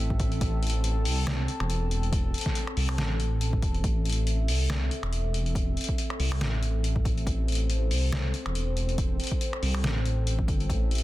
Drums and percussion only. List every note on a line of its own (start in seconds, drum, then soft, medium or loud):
0.10 kick medium
0.20 kick loud
0.20 closed hi-hat medium
0.32 closed hi-hat soft
0.41 kick loud
0.41 closed hi-hat medium
0.63 closed hi-hat soft
0.67 closed hi-hat medium
0.70 closed hi-hat medium
0.84 closed hi-hat medium
1.05 open hi-hat loud
1.27 finger snap medium
1.27 snare loud
1.27 closed hi-hat medium
1.48 closed hi-hat medium
1.60 finger snap medium
1.70 closed hi-hat medium
1.91 closed hi-hat medium
2.03 closed hi-hat soft
2.13 kick loud
2.13 closed hi-hat medium
2.34 closed hi-hat soft
2.38 closed hi-hat medium
2.41 closed hi-hat medium
2.46 kick medium
2.46 snare soft
2.55 closed hi-hat medium
2.67 finger snap medium
2.77 open hi-hat loud
2.89 finger snap medium
2.98 snare loud
2.98 closed hi-hat medium
3.20 closed hi-hat medium
3.41 closed hi-hat medium
3.53 kick medium
3.62 kick loud
3.62 closed hi-hat medium
3.74 closed hi-hat soft
3.84 kick loud
3.84 closed hi-hat medium
4.05 closed hi-hat medium
4.09 closed hi-hat medium
4.12 closed hi-hat medium
4.27 closed hi-hat medium
4.48 open hi-hat loud
4.70 finger snap medium
4.70 snare loud
4.91 closed hi-hat medium
5.03 finger snap medium
5.13 closed hi-hat medium
5.34 closed hi-hat medium
5.46 closed hi-hat soft
5.55 kick loud
5.55 closed hi-hat medium
5.77 closed hi-hat soft
5.81 closed hi-hat medium
5.84 closed hi-hat medium
5.89 kick medium
5.98 closed hi-hat medium
6.10 finger snap medium
6.20 open hi-hat medium
6.32 finger snap medium
6.41 snare loud
6.41 closed hi-hat medium
6.63 closed hi-hat medium
6.84 closed hi-hat medium
6.96 kick medium
7.05 kick loud
7.05 closed hi-hat medium
7.18 closed hi-hat soft
7.27 kick loud
7.27 closed hi-hat medium
7.48 closed hi-hat soft
7.52 closed hi-hat medium
7.55 closed hi-hat medium
7.70 closed hi-hat medium
7.91 open hi-hat medium
8.12 finger snap medium
8.12 snare loud
8.12 closed hi-hat medium
8.34 closed hi-hat medium
8.46 finger snap medium
8.55 closed hi-hat medium
8.77 closed hi-hat medium
8.89 closed hi-hat soft
8.98 kick loud
8.98 closed hi-hat medium
9.20 closed hi-hat soft
9.24 closed hi-hat medium
9.27 closed hi-hat medium
9.32 kick medium
9.41 closed hi-hat medium
9.53 finger snap medium
9.63 open hi-hat medium
9.75 finger snap medium
9.84 snare loud
9.84 closed hi-hat medium
10.05 closed hi-hat medium
10.27 closed hi-hat medium
10.39 kick medium
10.48 kick loud
10.48 closed hi-hat medium
10.60 closed hi-hat soft
10.70 kick loud
10.70 closed hi-hat medium
10.91 closed hi-hat soft
10.95 closed hi-hat medium
10.98 closed hi-hat medium